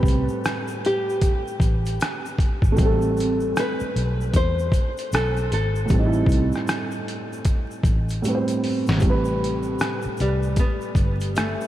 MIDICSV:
0, 0, Header, 1, 6, 480
1, 0, Start_track
1, 0, Key_signature, 0, "minor"
1, 0, Tempo, 779221
1, 1714, Time_signature, 4, 2, 24, 8
1, 7189, End_track
2, 0, Start_track
2, 0, Title_t, "Nylon-string guitar"
2, 0, Program_c, 0, 24
2, 0, Note_on_c, 0, 67, 79
2, 258, Note_off_c, 0, 67, 0
2, 531, Note_on_c, 0, 67, 107
2, 1458, Note_off_c, 0, 67, 0
2, 2214, Note_on_c, 0, 71, 98
2, 2684, Note_off_c, 0, 71, 0
2, 2687, Note_on_c, 0, 72, 107
2, 3165, Note_off_c, 0, 72, 0
2, 3167, Note_on_c, 0, 69, 84
2, 3400, Note_off_c, 0, 69, 0
2, 3408, Note_on_c, 0, 69, 87
2, 3857, Note_off_c, 0, 69, 0
2, 6290, Note_on_c, 0, 55, 90
2, 6506, Note_off_c, 0, 55, 0
2, 6526, Note_on_c, 0, 59, 104
2, 6999, Note_off_c, 0, 59, 0
2, 7001, Note_on_c, 0, 57, 90
2, 7189, Note_off_c, 0, 57, 0
2, 7189, End_track
3, 0, Start_track
3, 0, Title_t, "Upright piano"
3, 0, Program_c, 1, 0
3, 0, Control_c, 1, 64, 127
3, 0, Note_on_c, 1, 45, 66
3, 0, Note_on_c, 1, 55, 60
3, 0, Note_on_c, 1, 60, 62
3, 0, Note_on_c, 1, 71, 76
3, 1672, Note_off_c, 1, 45, 0
3, 1676, Note_on_c, 1, 57, 79
3, 1686, Note_off_c, 1, 55, 0
3, 1699, Note_off_c, 1, 60, 0
3, 1701, Note_on_c, 1, 55, 75
3, 1713, Note_off_c, 1, 71, 0
3, 1728, Note_on_c, 1, 60, 67
3, 1755, Note_on_c, 1, 69, 90
3, 3590, Note_off_c, 1, 57, 0
3, 3603, Note_off_c, 1, 55, 0
3, 3607, Note_on_c, 1, 45, 66
3, 3617, Note_off_c, 1, 60, 0
3, 3630, Note_off_c, 1, 69, 0
3, 3633, Note_on_c, 1, 55, 64
3, 3660, Note_on_c, 1, 60, 57
3, 3688, Note_on_c, 1, 63, 59
3, 3711, Note_off_c, 1, 63, 0
3, 3727, Note_on_c, 1, 64, 73
3, 5036, Note_off_c, 1, 45, 0
3, 5049, Note_off_c, 1, 55, 0
3, 5063, Note_off_c, 1, 60, 0
3, 5064, Note_on_c, 1, 45, 63
3, 5076, Note_on_c, 1, 55, 55
3, 5089, Note_on_c, 1, 60, 51
3, 5096, Note_off_c, 1, 64, 0
3, 5102, Note_on_c, 1, 71, 55
3, 5138, Note_off_c, 1, 71, 0
3, 5142, Note_on_c, 1, 72, 59
3, 5517, Note_off_c, 1, 45, 0
3, 5526, Note_on_c, 1, 45, 75
3, 5541, Note_off_c, 1, 55, 0
3, 5551, Note_on_c, 1, 55, 73
3, 5562, Note_off_c, 1, 60, 0
3, 5563, Control_c, 1, 64, 0
3, 5577, Note_on_c, 1, 48, 72
3, 5588, Note_off_c, 1, 72, 0
3, 5603, Note_on_c, 1, 71, 93
3, 5680, Control_c, 1, 64, 127
3, 7189, Note_off_c, 1, 45, 0
3, 7189, Note_off_c, 1, 48, 0
3, 7189, Note_off_c, 1, 55, 0
3, 7189, Note_off_c, 1, 71, 0
3, 7189, End_track
4, 0, Start_track
4, 0, Title_t, "Fingered electric bass"
4, 0, Program_c, 2, 33
4, 22, Note_on_c, 2, 36, 87
4, 167, Note_off_c, 2, 36, 0
4, 988, Note_on_c, 2, 33, 90
4, 1217, Note_off_c, 2, 33, 0
4, 1620, Note_on_c, 2, 32, 77
4, 1708, Note_off_c, 2, 32, 0
4, 1718, Note_on_c, 2, 33, 102
4, 2172, Note_off_c, 2, 33, 0
4, 2438, Note_on_c, 2, 35, 98
4, 2663, Note_off_c, 2, 35, 0
4, 2674, Note_on_c, 2, 40, 94
4, 2900, Note_off_c, 2, 40, 0
4, 3159, Note_on_c, 2, 35, 97
4, 3383, Note_off_c, 2, 35, 0
4, 3399, Note_on_c, 2, 32, 92
4, 3623, Note_off_c, 2, 32, 0
4, 3639, Note_on_c, 2, 33, 103
4, 3859, Note_off_c, 2, 33, 0
4, 3863, Note_on_c, 2, 36, 90
4, 4008, Note_off_c, 2, 36, 0
4, 4830, Note_on_c, 2, 33, 86
4, 5058, Note_off_c, 2, 33, 0
4, 5471, Note_on_c, 2, 32, 80
4, 5554, Note_off_c, 2, 32, 0
4, 5561, Note_on_c, 2, 33, 92
4, 6013, Note_off_c, 2, 33, 0
4, 6285, Note_on_c, 2, 36, 93
4, 6507, Note_off_c, 2, 36, 0
4, 6749, Note_on_c, 2, 31, 88
4, 7117, Note_off_c, 2, 31, 0
4, 7189, End_track
5, 0, Start_track
5, 0, Title_t, "Muted fingered electric bass strokes"
5, 2349, Note_on_c, 9, 29, 45
5, 2411, Note_off_c, 9, 29, 0
5, 6194, Note_on_c, 9, 29, 45
5, 6255, Note_off_c, 9, 29, 0
5, 7189, End_track
6, 0, Start_track
6, 0, Title_t, "Drums"
6, 18, Note_on_c, 9, 36, 86
6, 35, Note_on_c, 9, 82, 52
6, 51, Note_on_c, 9, 42, 70
6, 79, Note_off_c, 9, 36, 0
6, 96, Note_off_c, 9, 82, 0
6, 113, Note_off_c, 9, 42, 0
6, 177, Note_on_c, 9, 82, 46
6, 238, Note_off_c, 9, 82, 0
6, 273, Note_on_c, 9, 82, 65
6, 281, Note_on_c, 9, 37, 110
6, 283, Note_on_c, 9, 42, 84
6, 334, Note_off_c, 9, 82, 0
6, 343, Note_off_c, 9, 37, 0
6, 345, Note_off_c, 9, 42, 0
6, 417, Note_on_c, 9, 82, 55
6, 479, Note_off_c, 9, 82, 0
6, 522, Note_on_c, 9, 42, 63
6, 584, Note_off_c, 9, 42, 0
6, 675, Note_on_c, 9, 82, 41
6, 737, Note_off_c, 9, 82, 0
6, 748, Note_on_c, 9, 42, 84
6, 750, Note_on_c, 9, 36, 97
6, 755, Note_on_c, 9, 82, 61
6, 809, Note_off_c, 9, 42, 0
6, 811, Note_off_c, 9, 36, 0
6, 817, Note_off_c, 9, 82, 0
6, 908, Note_on_c, 9, 82, 42
6, 970, Note_off_c, 9, 82, 0
6, 985, Note_on_c, 9, 36, 90
6, 993, Note_on_c, 9, 82, 53
6, 995, Note_on_c, 9, 42, 62
6, 1046, Note_off_c, 9, 36, 0
6, 1054, Note_off_c, 9, 82, 0
6, 1057, Note_off_c, 9, 42, 0
6, 1144, Note_on_c, 9, 82, 51
6, 1149, Note_on_c, 9, 42, 50
6, 1205, Note_off_c, 9, 82, 0
6, 1211, Note_off_c, 9, 42, 0
6, 1234, Note_on_c, 9, 82, 74
6, 1239, Note_on_c, 9, 42, 83
6, 1247, Note_on_c, 9, 37, 108
6, 1296, Note_off_c, 9, 82, 0
6, 1301, Note_off_c, 9, 42, 0
6, 1309, Note_off_c, 9, 37, 0
6, 1390, Note_on_c, 9, 82, 55
6, 1452, Note_off_c, 9, 82, 0
6, 1469, Note_on_c, 9, 36, 90
6, 1479, Note_on_c, 9, 42, 76
6, 1531, Note_off_c, 9, 36, 0
6, 1540, Note_off_c, 9, 42, 0
6, 1614, Note_on_c, 9, 36, 84
6, 1624, Note_on_c, 9, 82, 46
6, 1676, Note_off_c, 9, 36, 0
6, 1686, Note_off_c, 9, 82, 0
6, 1705, Note_on_c, 9, 82, 66
6, 1715, Note_on_c, 9, 36, 112
6, 1718, Note_on_c, 9, 42, 79
6, 1766, Note_off_c, 9, 82, 0
6, 1777, Note_off_c, 9, 36, 0
6, 1779, Note_off_c, 9, 42, 0
6, 1859, Note_on_c, 9, 82, 52
6, 1920, Note_off_c, 9, 82, 0
6, 1952, Note_on_c, 9, 82, 51
6, 1973, Note_on_c, 9, 42, 72
6, 2014, Note_off_c, 9, 82, 0
6, 2035, Note_off_c, 9, 42, 0
6, 2097, Note_on_c, 9, 82, 44
6, 2158, Note_off_c, 9, 82, 0
6, 2194, Note_on_c, 9, 82, 67
6, 2200, Note_on_c, 9, 37, 103
6, 2201, Note_on_c, 9, 42, 82
6, 2255, Note_off_c, 9, 82, 0
6, 2261, Note_off_c, 9, 37, 0
6, 2263, Note_off_c, 9, 42, 0
6, 2340, Note_on_c, 9, 82, 52
6, 2401, Note_off_c, 9, 82, 0
6, 2442, Note_on_c, 9, 42, 64
6, 2504, Note_off_c, 9, 42, 0
6, 2592, Note_on_c, 9, 82, 42
6, 2654, Note_off_c, 9, 82, 0
6, 2671, Note_on_c, 9, 36, 88
6, 2671, Note_on_c, 9, 42, 85
6, 2674, Note_on_c, 9, 82, 60
6, 2732, Note_off_c, 9, 36, 0
6, 2733, Note_off_c, 9, 42, 0
6, 2735, Note_off_c, 9, 82, 0
6, 2827, Note_on_c, 9, 82, 41
6, 2889, Note_off_c, 9, 82, 0
6, 2906, Note_on_c, 9, 36, 90
6, 2915, Note_on_c, 9, 82, 54
6, 2917, Note_on_c, 9, 42, 63
6, 2968, Note_off_c, 9, 36, 0
6, 2976, Note_off_c, 9, 82, 0
6, 2979, Note_off_c, 9, 42, 0
6, 3064, Note_on_c, 9, 82, 52
6, 3072, Note_on_c, 9, 42, 54
6, 3126, Note_off_c, 9, 82, 0
6, 3134, Note_off_c, 9, 42, 0
6, 3155, Note_on_c, 9, 82, 74
6, 3163, Note_on_c, 9, 42, 89
6, 3170, Note_on_c, 9, 37, 109
6, 3216, Note_off_c, 9, 82, 0
6, 3225, Note_off_c, 9, 42, 0
6, 3232, Note_off_c, 9, 37, 0
6, 3307, Note_on_c, 9, 82, 53
6, 3369, Note_off_c, 9, 82, 0
6, 3400, Note_on_c, 9, 42, 75
6, 3462, Note_off_c, 9, 42, 0
6, 3546, Note_on_c, 9, 82, 49
6, 3607, Note_off_c, 9, 82, 0
6, 3623, Note_on_c, 9, 82, 61
6, 3636, Note_on_c, 9, 36, 116
6, 3637, Note_on_c, 9, 42, 76
6, 3685, Note_off_c, 9, 82, 0
6, 3697, Note_off_c, 9, 36, 0
6, 3699, Note_off_c, 9, 42, 0
6, 3776, Note_on_c, 9, 82, 52
6, 3837, Note_off_c, 9, 82, 0
6, 3859, Note_on_c, 9, 36, 92
6, 3874, Note_on_c, 9, 82, 51
6, 3892, Note_on_c, 9, 42, 72
6, 3920, Note_off_c, 9, 36, 0
6, 3936, Note_off_c, 9, 82, 0
6, 3954, Note_off_c, 9, 42, 0
6, 4018, Note_on_c, 9, 82, 45
6, 4038, Note_on_c, 9, 37, 36
6, 4080, Note_off_c, 9, 82, 0
6, 4099, Note_off_c, 9, 37, 0
6, 4111, Note_on_c, 9, 82, 71
6, 4121, Note_on_c, 9, 37, 111
6, 4123, Note_on_c, 9, 42, 83
6, 4173, Note_off_c, 9, 82, 0
6, 4183, Note_off_c, 9, 37, 0
6, 4185, Note_off_c, 9, 42, 0
6, 4259, Note_on_c, 9, 82, 49
6, 4321, Note_off_c, 9, 82, 0
6, 4363, Note_on_c, 9, 42, 61
6, 4424, Note_off_c, 9, 42, 0
6, 4514, Note_on_c, 9, 82, 40
6, 4575, Note_off_c, 9, 82, 0
6, 4587, Note_on_c, 9, 42, 80
6, 4591, Note_on_c, 9, 36, 97
6, 4592, Note_on_c, 9, 82, 62
6, 4649, Note_off_c, 9, 42, 0
6, 4652, Note_off_c, 9, 36, 0
6, 4653, Note_off_c, 9, 82, 0
6, 4750, Note_on_c, 9, 82, 42
6, 4811, Note_off_c, 9, 82, 0
6, 4826, Note_on_c, 9, 36, 96
6, 4833, Note_on_c, 9, 82, 54
6, 4835, Note_on_c, 9, 42, 62
6, 4888, Note_off_c, 9, 36, 0
6, 4895, Note_off_c, 9, 82, 0
6, 4897, Note_off_c, 9, 42, 0
6, 4982, Note_on_c, 9, 82, 53
6, 4993, Note_on_c, 9, 42, 51
6, 5044, Note_off_c, 9, 82, 0
6, 5054, Note_off_c, 9, 42, 0
6, 5074, Note_on_c, 9, 82, 74
6, 5083, Note_on_c, 9, 42, 90
6, 5136, Note_off_c, 9, 82, 0
6, 5144, Note_off_c, 9, 42, 0
6, 5223, Note_on_c, 9, 42, 54
6, 5228, Note_on_c, 9, 82, 53
6, 5284, Note_off_c, 9, 42, 0
6, 5290, Note_off_c, 9, 82, 0
6, 5320, Note_on_c, 9, 46, 52
6, 5382, Note_off_c, 9, 46, 0
6, 5462, Note_on_c, 9, 82, 47
6, 5476, Note_on_c, 9, 38, 83
6, 5523, Note_off_c, 9, 82, 0
6, 5537, Note_off_c, 9, 38, 0
6, 5543, Note_on_c, 9, 82, 63
6, 5557, Note_on_c, 9, 36, 113
6, 5558, Note_on_c, 9, 42, 74
6, 5604, Note_off_c, 9, 82, 0
6, 5618, Note_off_c, 9, 36, 0
6, 5619, Note_off_c, 9, 42, 0
6, 5698, Note_on_c, 9, 82, 53
6, 5759, Note_off_c, 9, 82, 0
6, 5815, Note_on_c, 9, 42, 67
6, 5877, Note_off_c, 9, 42, 0
6, 5931, Note_on_c, 9, 82, 46
6, 5993, Note_off_c, 9, 82, 0
6, 6031, Note_on_c, 9, 82, 66
6, 6044, Note_on_c, 9, 37, 103
6, 6046, Note_on_c, 9, 42, 86
6, 6092, Note_off_c, 9, 82, 0
6, 6105, Note_off_c, 9, 37, 0
6, 6107, Note_off_c, 9, 42, 0
6, 6173, Note_on_c, 9, 82, 49
6, 6235, Note_off_c, 9, 82, 0
6, 6266, Note_on_c, 9, 82, 54
6, 6284, Note_on_c, 9, 42, 65
6, 6327, Note_off_c, 9, 82, 0
6, 6346, Note_off_c, 9, 42, 0
6, 6423, Note_on_c, 9, 82, 40
6, 6485, Note_off_c, 9, 82, 0
6, 6507, Note_on_c, 9, 42, 86
6, 6509, Note_on_c, 9, 82, 60
6, 6510, Note_on_c, 9, 36, 89
6, 6568, Note_off_c, 9, 42, 0
6, 6570, Note_off_c, 9, 82, 0
6, 6572, Note_off_c, 9, 36, 0
6, 6661, Note_on_c, 9, 82, 38
6, 6722, Note_off_c, 9, 82, 0
6, 6745, Note_on_c, 9, 36, 88
6, 6750, Note_on_c, 9, 82, 54
6, 6754, Note_on_c, 9, 42, 58
6, 6807, Note_off_c, 9, 36, 0
6, 6811, Note_off_c, 9, 82, 0
6, 6816, Note_off_c, 9, 42, 0
6, 6901, Note_on_c, 9, 82, 52
6, 6908, Note_on_c, 9, 42, 51
6, 6963, Note_off_c, 9, 82, 0
6, 6970, Note_off_c, 9, 42, 0
6, 6996, Note_on_c, 9, 82, 73
6, 7001, Note_on_c, 9, 42, 88
6, 7009, Note_on_c, 9, 37, 103
6, 7058, Note_off_c, 9, 82, 0
6, 7063, Note_off_c, 9, 42, 0
6, 7070, Note_off_c, 9, 37, 0
6, 7152, Note_on_c, 9, 82, 56
6, 7189, Note_off_c, 9, 82, 0
6, 7189, End_track
0, 0, End_of_file